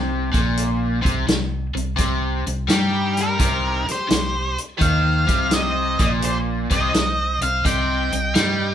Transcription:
0.00 0.30 C2 medium
0.00 0.32 C3 medium
0.32 1.01 A#1 medium
0.32 1.02 A#2 medium
0.32 kick medium
0.32 snare soft
0.32 closed hi-hat medium
0.57 closed hi-hat medium
1.02 1.26 C2 medium
1.02 1.26 C3 medium
1.02 kick loud
1.02 closed hi-hat medium
1.28 1.72 C2 medium
1.28 1.66 C3 medium
1.28 snare loud
1.28 closed hi-hat medium
1.75 1.97 C2 medium
1.75 1.94 C3 medium
1.75 closed hi-hat medium
1.97 2.43 C2 medium
1.97 2.44 C3 loud
1.97 kick medium
1.97 closed hi-hat medium
2.47 2.67 C2 medium
2.47 2.65 C3 medium
2.47 closed hi-hat medium
2.68 3.36 G2 medium
2.68 3.39 G3 medium
2.68 3.14 D#4 medium
2.68 3.20 G4 medium
2.68 snare loud
2.68 closed hi-hat medium
3.17 3.85 D#4 medium
3.17 3.86 A#4 medium
3.17 snare soft
3.17 closed hi-hat medium
3.39 3.84 C2 medium
3.39 3.85 C3 medium
3.39 kick loud
3.39 closed hi-hat medium
3.86 4.56 G4 medium
3.86 muted overdriven electric guitar stroke soft
3.86 muted fingered electric bass stroke soft
3.86 snare soft
3.86 closed hi-hat medium
3.91 4.57 C5 medium
4.09 4.55 C2 medium
4.09 4.48 C3 medium
4.09 snare loud
4.09 closed hi-hat medium
4.58 closed hi-hat medium
4.78 5.26 D#2 medium
4.78 5.27 D#3 medium
4.78 5.47 C5 medium
4.78 5.55 F5 medium
4.78 kick loud
4.78 closed hi-hat medium
5.27 5.96 C2 medium
5.27 5.98 C3 medium
5.27 kick loud
5.27 closed hi-hat medium
5.51 5.97 C5 medium
5.51 6.01 D#5 medium
5.51 snare loud
5.51 closed hi-hat medium
5.99 6.67 A#1 medium
5.99 6.69 A#2 medium
5.99 6.05 A#4 medium
5.99 6.08 D#5 medium
5.99 kick medium
5.99 closed hi-hat medium
6.22 6.35 G4 medium
6.22 6.37 C5 medium
6.22 closed hi-hat medium
6.70 6.92 C2 medium
6.70 6.92 C3 medium
6.70 7.38 C5 medium
6.70 7.39 D#5 medium
6.70 kick medium
6.70 closed hi-hat medium
6.94 7.39 C2 medium
6.94 7.32 C3 medium
6.94 snare loud
6.94 closed hi-hat medium
7.41 7.63 C2 medium
7.41 7.61 C3 medium
7.41 7.63 C5 medium
7.41 7.66 F5 medium
7.41 closed hi-hat medium
7.65 8.09 C2 medium
7.65 8.11 C3 medium
7.65 8.74 D#5 medium
7.65 8.74 G5 loud
7.65 kick loud
7.65 closed hi-hat medium
8.12 8.34 C2 medium
8.12 8.31 C3 medium
8.12 closed hi-hat medium
8.35 8.74 G2 medium
8.35 8.74 G3 medium
8.35 snare loud
8.35 closed hi-hat medium

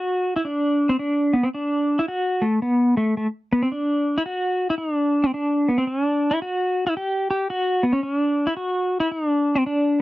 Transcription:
0.00 0.36 F#4 medium
0.36 0.46 E4 medium
0.45 0.91 D4 medium
0.89 0.99 C4 medium
0.99 1.35 D4 medium
1.33 1.44 B3 medium
1.43 1.48 C4 medium
1.54 1.99 D4 medium
1.99 2.07 E4 medium
2.08 2.43 F#4 medium
2.42 2.60 A3 medium
2.62 2.97 B3 medium
2.97 3.16 A3 medium
3.17 3.26 A3 medium
3.53 3.61 B3 medium
3.63 3.71 C4 medium
3.72 4.16 D4 medium
4.18 4.25 E4 medium
4.26 4.70 F#4 medium
4.70 4.74 E4 medium
4.78 4.95 D#4 medium
4.95 5.23 D4 medium
5.24 5.33 C4 medium
5.34 5.68 D4 loud
5.69 5.77 B3 medium
5.78 5.87 C4 medium
5.87 6.04 C#4 medium
6.04 6.32 D4 medium
6.31 6.40 E4 medium
6.42 6.86 F#4 loud
6.87 6.95 E4 medium
6.97 7.29 G4 medium
7.30 7.49 G4 medium
7.50 7.84 F#4 loud
7.83 7.92 B3 medium
7.93 8.02 C#4 medium
8.03 8.14 C#4 medium
8.14 8.46 D4 medium
8.47 8.55 E4 medium
8.57 9.00 F#4 loud
9.00 9.10 E4 medium
9.11 9.28 D#4 medium
9.28 9.56 D4 medium
9.55 9.63 C4 medium
9.66 10.00 D4 loud

